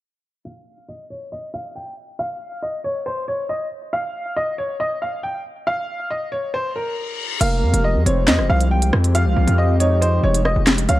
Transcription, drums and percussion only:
7.41 closed hi-hat, crash
7.74 closed hi-hat
8.06 closed hi-hat
8.28 snare, clap, closed hi-hat
8.39 cross-stick
8.61 closed hi-hat
8.82 closed hi-hat
8.93 cross-stick
9.04 closed hi-hat
9.15 closed hi-hat
9.48 closed hi-hat
9.80 closed hi-hat
10.02 closed hi-hat
10.34 closed hi-hat
10.45 cross-stick
10.67 snare, clap, closed hi-hat
10.78 closed hi-hat
10.89 closed hi-hat

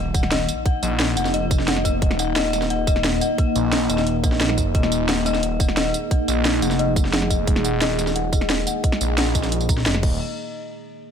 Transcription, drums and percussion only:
0.14 kick, closed hi-hat, tambourine
0.23 snare
0.32 snare, closed hi-hat
0.49 closed hi-hat, tambourine
0.66 kick, closed hi-hat
0.83 closed hi-hat, tambourine
1.00 snare, closed hi-hat
1.08 closed hi-hat
1.17 closed hi-hat, tambourine
1.25 snare, tambourine
1.34 closed hi-hat
1.51 kick, closed hi-hat, tambourine
1.59 snare
1.68 snare, closed hi-hat
1.76 snare
1.85 kick, closed hi-hat, tambourine
2.02 kick, closed hi-hat
2.11 snare
2.19 closed hi-hat, tambourine
2.36 snare, closed hi-hat
2.45 closed hi-hat
2.53 snare, closed hi-hat, tambourine
2.62 snare, tambourine
2.70 closed hi-hat
2.87 kick, closed hi-hat, tambourine
2.96 snare
3.04 snare, closed hi-hat
3.21 closed hi-hat, tambourine
3.38 kick, closed hi-hat
3.56 closed hi-hat, tambourine
3.73 snare, closed hi-hat
3.81 closed hi-hat
3.90 closed hi-hat, tambourine
3.98 snare, tambourine
4.07 closed hi-hat
4.24 kick, closed hi-hat, tambourine
4.32 snare
4.41 snare, closed hi-hat
4.49 snare
4.58 kick, closed hi-hat, tambourine
4.75 kick, closed hi-hat
4.83 snare
4.92 closed hi-hat, tambourine
5.09 snare, closed hi-hat
5.17 closed hi-hat
5.26 snare, closed hi-hat, tambourine
5.34 snare, tambourine
5.43 closed hi-hat
5.60 kick, closed hi-hat, tambourine
5.69 snare
5.77 snare, closed hi-hat
5.94 closed hi-hat, tambourine
6.11 kick, closed hi-hat
6.28 closed hi-hat, tambourine
6.45 snare, closed hi-hat
6.54 closed hi-hat
6.62 closed hi-hat, tambourine
6.71 snare, tambourine
6.79 closed hi-hat
6.96 kick, closed hi-hat, tambourine
7.05 snare
7.14 snare, closed hi-hat
7.22 snare
7.30 kick, closed hi-hat, tambourine
7.47 kick, closed hi-hat
7.56 snare
7.65 closed hi-hat, tambourine
7.82 snare, closed hi-hat
7.90 closed hi-hat
7.99 snare, closed hi-hat, tambourine
8.07 snare, tambourine
8.16 closed hi-hat
8.33 kick, closed hi-hat, tambourine
8.41 snare
8.50 snare, closed hi-hat
8.67 closed hi-hat, tambourine
8.84 kick, closed hi-hat
8.92 snare
9.01 closed hi-hat, tambourine
9.18 snare, closed hi-hat
9.26 closed hi-hat
9.35 kick, closed hi-hat, tambourine
9.43 snare, closed hi-hat, tambourine
9.52 closed hi-hat
9.61 tambourine
9.69 kick, closed hi-hat, tambourine
9.78 snare
9.86 snare, closed hi-hat
9.95 snare
10.03 kick, crash

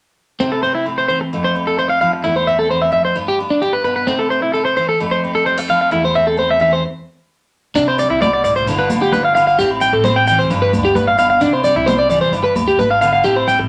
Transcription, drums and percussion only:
0.52 low agogo
0.86 low agogo
1.33 low agogo
1.55 low agogo
2.01 low agogo
2.37 low agogo
2.71 low agogo
3.16 low agogo
3.39 low agogo
3.86 low agogo
4.21 low agogo
4.55 low agogo
5.01 low agogo
5.24 low agogo
5.70 low agogo
6.04 low agogo
6.38 low agogo
7.76 muted conga, maracas
7.88 low agogo
7.99 muted conga, maracas
8.21 muted conga, high conga, low agogo, maracas
8.45 maracas
8.56 maracas
8.67 low agogo, maracas
8.90 muted conga, high conga, low agogo, maracas
9.12 high conga, maracas
9.36 low agogo, maracas
9.48 maracas
9.58 muted conga, maracas
9.71 low agogo
9.81 muted conga, maracas
10.04 muted conga, high conga, low agogo, maracas
10.27 maracas
10.40 maracas
10.50 low agogo, maracas
10.73 muted conga, high conga, low agogo, maracas
10.85 maracas
10.95 high conga, maracas
11.18 low agogo, maracas
11.30 maracas
11.41 muted conga, maracas
11.53 low agogo
11.64 muted conga, maracas
11.87 muted conga, high conga, low agogo, maracas
12.10 maracas
12.23 maracas
12.33 low agogo, maracas
12.56 high conga, low agogo, maracas
12.68 maracas
12.79 high conga, maracas
13.02 low agogo, maracas
13.14 maracas
13.25 muted conga, maracas
13.36 low agogo
13.47 muted conga, maracas

